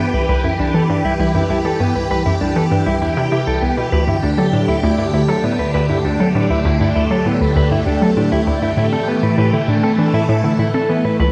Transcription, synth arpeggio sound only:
0.14 0.20 C2 medium
0.29 0.43 C2 loud
0.44 0.50 F#2 medium
0.59 0.69 C2 medium
0.74 0.89 E3 medium
0.90 0.96 G2 medium
1.05 1.11 C2 medium
1.20 1.34 C2 loud
1.35 1.41 F#2 medium
1.50 1.60 C2 medium
1.65 1.79 E3 medium
1.80 1.86 G2 medium
1.95 2.01 C2 medium
2.11 2.25 C2 loud
2.26 2.32 F#2 medium
2.41 2.51 C2 medium
2.56 2.71 E3 medium
2.71 2.77 G2 medium
2.87 2.93 C2 medium
3.02 3.08 E2 medium
3.17 3.27 C3 loud
3.32 3.42 C3 medium
3.47 3.57 C2 medium
3.62 3.68 C2 medium
3.78 3.88 B2 medium
3.92 4.07 D2 loud
4.08 4.14 G2 medium
4.23 4.33 D2 medium
4.38 4.52 F#3 medium
4.53 4.59 A2 medium
4.68 4.74 D2 medium
4.83 4.98 D2 loud
4.99 5.05 G2 medium
5.14 5.24 D2 medium
5.29 5.43 F#3 medium
5.44 5.50 A2 medium
5.59 5.65 D2 medium
5.74 5.89 D2 loud
5.90 5.96 G2 medium
6.05 6.15 D2 medium
6.20 6.34 F#3 medium
6.35 6.41 A2 medium
6.50 6.56 D2 medium
6.65 6.80 D2 loud
6.81 6.87 G2 medium
6.96 7.06 D2 medium
7.11 7.25 F#3 medium
7.26 7.32 A2 medium
7.41 7.47 D2 medium
7.56 7.70 D2 loud
7.71 7.77 G2 medium
7.86 7.97 D2 medium
8.02 8.16 F#3 medium
8.17 8.23 A2 medium
8.32 8.38 D2 medium
8.47 8.61 D2 loud
8.62 8.68 G2 medium
8.77 8.87 A2 medium
8.92 9.07 C4 medium
9.07 9.14 E3 medium
9.23 9.29 A2 medium
9.38 9.52 A2 loud
9.53 9.59 D3 medium
9.68 9.78 A2 medium
9.83 9.98 C4 medium
9.98 10.05 E3 medium
10.14 10.20 A2 medium
10.29 10.43 A2 loud
10.44 10.50 D3 medium
10.59 10.69 A2 medium
10.74 10.89 C4 medium
10.89 10.95 E3 medium
11.05 11.11 A2 medium
11.20 11.32 C#2 loud

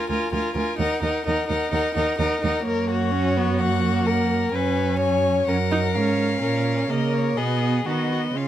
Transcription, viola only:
0.10 0.33 F4 soft
0.34 0.56 F4 soft
0.57 0.78 F4 soft
0.78 1.01 D#4 soft
1.03 1.26 D#4 soft
1.26 1.47 D#4 soft
1.48 1.71 D#4 soft
1.72 1.94 D#4 soft
1.95 2.18 D#4 soft
2.19 2.41 D#4 soft
2.42 2.63 D#4 soft
2.64 3.13 A#3 soft
3.12 3.38 C#4 medium
3.37 3.62 B3 medium
3.60 4.54 A#3 medium
4.55 5.47 C#4 soft
5.48 5.56 C#4 medium
5.72 5.80 D#4 medium
5.95 6.41 C#4 medium
6.42 6.91 C#4 soft
6.90 7.39 A#3 soft
7.37 7.85 B3 soft
7.86 8.37 B3 soft
8.36 8.48 C#4 soft

